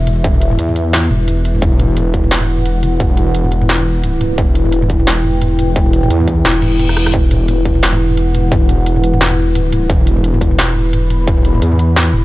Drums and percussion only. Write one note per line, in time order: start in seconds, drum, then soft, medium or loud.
0.07 closed hi-hat medium
0.07 mid tom medium
0.24 kick loud
0.24 closed hi-hat medium
0.34 mid tom soft
0.42 closed hi-hat medium
0.51 mid tom medium
0.59 closed hi-hat medium
0.69 mid tom medium
0.76 closed hi-hat medium
0.93 snare loud
0.93 closed hi-hat medium
0.93 mid tom soft
1.11 mid tom medium
1.28 closed hi-hat medium
1.28 mid tom soft
1.45 closed hi-hat medium
1.55 mid tom soft
1.62 kick loud
1.62 closed hi-hat medium
1.62 mid tom medium
1.80 closed hi-hat medium
1.80 mid tom medium
1.97 closed hi-hat medium
1.97 mid tom medium
2.14 kick medium
2.14 closed hi-hat medium
2.24 mid tom medium
2.31 snare loud
2.31 closed hi-hat medium
2.41 mid tom medium
2.58 mid tom soft
2.66 closed hi-hat medium
2.83 closed hi-hat medium
2.83 mid tom soft
3.00 kick loud
3.00 closed hi-hat medium
3.00 mid tom medium
3.17 closed hi-hat medium
3.17 mid tom medium
3.35 closed hi-hat medium
3.44 mid tom medium
3.52 closed hi-hat medium
3.62 mid tom medium
3.69 snare loud
3.69 closed hi-hat medium
3.79 mid tom medium
4.04 closed hi-hat medium
4.04 mid tom medium
4.21 closed hi-hat medium
4.21 mid tom medium
4.38 kick loud
4.38 closed hi-hat medium
4.38 mid tom medium
4.55 closed hi-hat medium
4.65 mid tom medium
4.72 closed hi-hat medium
4.82 mid tom medium
4.90 kick medium
4.90 closed hi-hat medium
5.00 mid tom medium
5.07 snare loud
5.07 closed hi-hat medium
5.24 mid tom medium
5.42 closed hi-hat medium
5.42 mid tom medium
5.59 closed hi-hat medium
5.59 mid tom medium
5.76 kick loud
5.76 closed hi-hat medium
5.86 mid tom medium
5.93 closed hi-hat medium
6.03 mid tom medium
6.10 closed hi-hat medium
6.20 mid tom medium
6.28 kick medium
6.28 closed hi-hat medium
6.45 snare loud
6.45 closed hi-hat medium
6.45 mid tom medium
6.62 closed hi-hat soft
6.62 mid tom medium
6.80 closed hi-hat medium
6.80 mid tom medium
6.89 cross-stick medium
6.97 cross-stick medium
6.97 closed hi-hat medium
7.06 cross-stick medium
7.06 mid tom medium
7.14 kick loud
7.14 closed hi-hat medium
7.14 mid tom medium
7.31 closed hi-hat medium
7.31 mid tom medium
7.48 closed hi-hat medium
7.48 mid tom medium
7.65 kick medium
7.65 closed hi-hat medium
7.75 mid tom medium
7.83 snare loud
7.83 closed hi-hat medium
7.93 mid tom medium
8.10 mid tom medium
8.17 closed hi-hat medium
8.35 closed hi-hat medium
8.35 mid tom medium
8.52 kick loud
8.52 closed hi-hat medium
8.52 mid tom medium
8.69 closed hi-hat medium
8.69 mid tom medium
8.86 closed hi-hat medium
8.96 mid tom medium
9.04 closed hi-hat medium
9.13 mid tom medium
9.21 snare loud
9.21 closed hi-hat medium
9.31 mid tom medium
9.55 closed hi-hat medium
9.55 mid tom medium
9.73 closed hi-hat medium
9.73 mid tom medium
9.90 kick loud
9.90 closed hi-hat medium
9.90 mid tom soft
10.07 closed hi-hat medium
10.17 mid tom medium
10.24 closed hi-hat medium
10.34 mid tom medium
10.41 kick medium
10.41 closed hi-hat medium
10.51 mid tom medium
10.59 snare loud
10.59 closed hi-hat medium
10.76 mid tom soft
10.93 closed hi-hat medium
10.93 mid tom medium
11.10 closed hi-hat medium
11.10 mid tom medium
11.28 kick loud
11.28 closed hi-hat medium
11.38 mid tom soft
11.45 closed hi-hat medium
11.55 mid tom medium
11.62 closed hi-hat medium
11.72 mid tom soft
11.79 closed hi-hat medium
11.96 snare loud
11.96 closed hi-hat medium
11.96 mid tom soft
12.14 mid tom medium